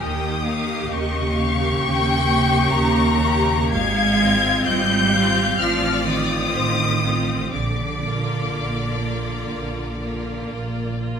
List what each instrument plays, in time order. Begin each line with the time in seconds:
0.01 double bass section D#2, cello section D#3, viola section A#3 G4, violin section G5 D#6
0.46 viola section A#3 G4, violin section F5
0.90 double bass section D#2, cello section C#3, violin section D#5 C#6
1.35 viola section A#3 G4, violin section F5
1.78 double bass section D#2, violin section G5
2.27 viola section A#3 G4
2.71 double bass section D#2, violin section A#5
3.23 viola section A#3 G4
3.71 double bass section G#1, cello section G#3, violin section F5 G#6
4.21 viola section C4 F4
4.66 double bass section G#1, cello section G3, violin section D#5 G6
5.13 viola section C4 F4, violin section F5
5.58 double bass section A1, cello section F3, viola section C4 F4, violin section D5 F6
6.06 cello section D#3, viola section C4 F4, violin section D#6
6.53 double bass section A1, violin section C5
7.04 viola section C4 F4
7.52 double bass section A#1, cello section D3, violin section D5 D6
8.04 viola section A#3 F4
8.52 double bass section A#1
9.02 viola section A#3 F4
9.51 double bass section A#1
10.02 viola section A#3 F4
10.50 double bass section A#1
10.99 viola section A#3 F4